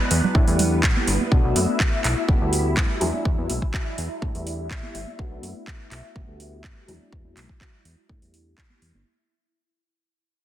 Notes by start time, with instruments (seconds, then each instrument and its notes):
Already playing: grand piano F#3 G#3 D4 E4, string machine B3 B4
0.10 analog synth bass E2, open hi-hat, maracas
0.24 low conga, maracas
0.34 analog synth bass A2, grand piano G3 A3 D4 E4, kick
0.48 analog synth bass E2, open hi-hat
0.59 open hi-hat, low conga, maracas
0.72 maracas
0.83 analog synth bass A1, kick, clap
0.97 high conga
1.07 analog synth bass G1, open hi-hat, maracas
1.20 high conga, maracas
1.31 analog synth bass B1, grand piano A3 B3 D4 F#4, string machine E4 E5, kick
1.45 analog synth bass B1
1.56 analog synth bass F#2, open hi-hat, high conga, maracas
1.69 maracas
1.80 kick, clap
2.04 analog synth bass B1, clap, open hi-hat
2.28 analog synth bass G1, grand piano G3 A3 B3 F#4, kick
2.42 analog synth bass D2
2.53 open hi-hat, maracas
2.66 maracas
2.77 analog synth bass G2, kick, clap
3.00 analog synth bass E2, grand piano F#3 G#3 D4 E4, open hi-hat
3.14 high conga, maracas
3.25 analog synth bass E2, kick
3.38 analog synth bass E2, high conga
3.49 analog synth bass B1, open hi-hat, high conga, maracas
3.62 kick
3.74 kick, clap
3.98 analog synth bass E2, open hi-hat
4.21 analog synth bass A2, grand piano G3 A3 D4, kick
4.35 analog synth bass E2, open hi-hat
4.47 open hi-hat, maracas
4.59 maracas
4.71 analog synth bass A1, kick, clap
4.83 high conga
4.94 analog synth bass G1, open hi-hat, maracas
5.07 high conga, maracas
5.18 analog synth bass B1, grand piano A3 B3 D4 F#4, kick
5.32 analog synth bass B1
5.42 analog synth bass F#2, open hi-hat, high conga, maracas
5.56 maracas
5.67 kick, clap
5.91 analog synth bass B1, clap, open hi-hat
6.15 analog synth bass G1, grand piano G3 A3 B3 F#4, kick
6.28 analog synth bass D2
6.40 open hi-hat, maracas
6.64 analog synth bass G2, kick, clap
6.88 analog synth bass E2, grand piano F#3 G#3 D4 E4, open hi-hat
7.01 high conga, maracas
7.12 analog synth bass E2, kick
7.24 analog synth bass E2, high conga
7.36 analog synth bass B1, clap, open hi-hat, high conga, maracas
7.49 kick, maracas
7.61 kick, clap
7.85 analog synth bass E2, open hi-hat
8.09 analog synth bass A2, grand piano A3 D4 E4, kick
8.22 analog synth bass E2, open hi-hat
8.34 open hi-hat
8.58 kick, clap
8.70 high conga
8.81 analog synth bass E2, open hi-hat, maracas
8.94 analog synth bass G1, high conga, maracas